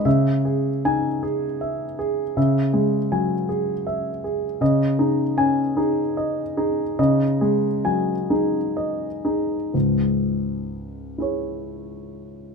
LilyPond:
<<
  \new Staff \with { instrumentName = "Grand piano" } { \time 6/8 \key cis \minor \tempo 4. = 51 << { r4 gis''4 r4 | r2. | r4 gis''4 r4 | r2. |
r4. <e' gis' cis''>4. | } \\ { e''8 gis'4 gis'8 e''8 gis'8 | e''8 gis'8 gis''8 gis'8 e''8 gis'8 | dis''8 gis'4 gis'8 dis''8 gis'8 | dis''8 gis'8 gis''8 gis'8 dis''8 gis'8 |
r2. | } >> }
  \new Staff \with { instrumentName = "Grand piano" } { \clef bass \time 6/8 \key cis \minor cis4 dis'8 r4. | cis8 gis8 fis8 r4. | cis8 dis'8 cis'8 dis'4 dis'8 | cis8 gis8 fis8 dis'4 dis'8 |
<cis, gis,>2. | }
>>